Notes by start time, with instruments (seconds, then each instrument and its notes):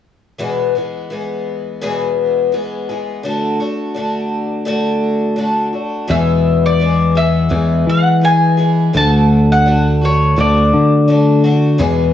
0.38 twelve-string acoustic guitar E2 B2 E3 G#3 B3 G#4
0.75 twelve-string acoustic guitar E3 G#3 B3 G#4
1.10 twelve-string acoustic guitar E3 G#3 B3 G#4
1.82 twelve-string acoustic guitar E2 B2 E3 G#3 B3 G#4
2.52 twelve-string acoustic guitar E3 G#3 B3 G#4
2.89 twelve-string acoustic guitar E3 G#3 B3 G#4
3.23 twelve-string acoustic guitar D3 A3 D4 F#4
3.60 twelve-string acoustic guitar A3 D4 F#4
3.94 twelve-string acoustic guitar D3 A3 D4 F#4
4.65 twelve-string acoustic guitar D3 A3 D4 F#4
5.36 twelve-string acoustic guitar D3 A3 D4 F#4
5.73 twelve-string acoustic guitar A3 D4 F#4
6.08 twelve-string acoustic guitar E2 B2 E3 G#3 B3 G#4, picked electric bass E2, mandolin E5
6.66 mandolin D5
6.80 twelve-string acoustic guitar E3 G#3 B3 G#4
7.16 twelve-string acoustic guitar E3 G#3 B3 G#4, mandolin E5
7.49 picked electric bass E2, twelve-string acoustic guitar E3 G#3 B3 G#4
7.87 picked electric bass E3, mandolin F#5
8.21 twelve-string acoustic guitar E3 G#3 B3 G#4, mandolin G#5
8.57 twelve-string acoustic guitar E3 G#3 B3 G#4
8.93 picked electric bass D2, twelve-string acoustic guitar D3 A3 D4 F#4, mandolin A5
9.52 mandolin F#5
9.65 twelve-string acoustic guitar D3 A3 D4 F#4
10.01 twelve-string acoustic guitar A3 D4 F#4, mandolin C#5
10.36 picked electric bass D2, twelve-string acoustic guitar D3 A3 D4 F#4
10.40 mandolin D5
10.74 picked electric bass D3
11.08 twelve-string acoustic guitar D3 A3 D4 F#4
11.44 twelve-string acoustic guitar A3 D4 F#4
11.78 twelve-string acoustic guitar E2 B2 E3 G#3 B3 G#4, picked electric bass E2